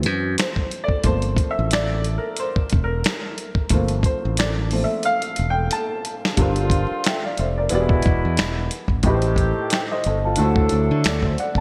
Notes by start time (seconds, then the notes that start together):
Already playing: E3 F#3 C4
0.03 F#2, closed hi-hat
0.38 C5, finger snap, snare, closed hi-hat
0.56 kick
0.71 closed hi-hat
0.84 D5
0.89 kick
1.04 G1 F3 A3 A#3 C4 C5, kick, closed hi-hat
1.22 closed hi-hat
1.37 kick, closed hi-hat
1.51 E5
1.59 A1
1.71 D5, finger snap, snare, closed hi-hat
2.04 closed hi-hat
2.18 A#4
2.37 C5, closed hi-hat
2.56 kick
2.70 kick, closed hi-hat
2.74 E1
2.84 A#4
3.04 finger snap, snare, closed hi-hat
3.38 closed hi-hat
3.55 kick
3.69 G1 F3 A3 A#3 C4, kick, closed hi-hat
3.88 closed hi-hat
4.03 C5, kick, closed hi-hat
4.25 A1
4.37 D5, finger snap, snare, closed hi-hat
4.71 F3 A3 A#3 C4, open hi-hat
4.84 E5
5.03 F5, closed hi-hat
5.22 closed hi-hat
5.36 E1, closed hi-hat
5.50 G5
5.71 A5, closed hi-hat
6.05 closed hi-hat
6.25 snare
6.37 G1 D3 G3 C4 D4 F4 A4, kick, closed hi-hat
6.41 A#4 C5
6.56 closed hi-hat
6.70 kick, closed hi-hat
6.91 muted fingered electric bass stroke
7.04 E5 G5, finger snap, snare, closed hi-hat
7.24 D5 F5
7.38 F1 C5 E5, closed hi-hat
7.58 A#4 D5
7.69 E1 B2 E3 G#3 B3 E4 F#4, closed hi-hat
7.74 G4 D5
7.80 G#4
7.89 kick
8.02 kick, closed hi-hat
8.07 E1
8.25 E2
8.37 E1, finger snap, snare, closed hi-hat
8.71 closed hi-hat
8.88 G#1, kick
9.03 A1 A2 D#3 A3 C4 D#4 G4, kick, closed hi-hat
9.08 B4
9.14 C5
9.22 closed hi-hat
9.36 kick, closed hi-hat
9.58 muted fingered electric bass stroke
9.70 D#5 G5, finger snap, snare, closed hi-hat
9.91 C5 D#5
10.04 G1 A4 C5, closed hi-hat
10.25 F4 A4
10.36 D2 D3 F#3 A3 D4 E4 A4, closed hi-hat
10.40 F#4 C5
10.56 kick
10.69 D2, closed hi-hat
10.91 D3
11.04 D2 D5, finger snap, snare, closed hi-hat
11.23 C5 E5, kick
11.38 D5 F#5, closed hi-hat
11.55 F#1, kick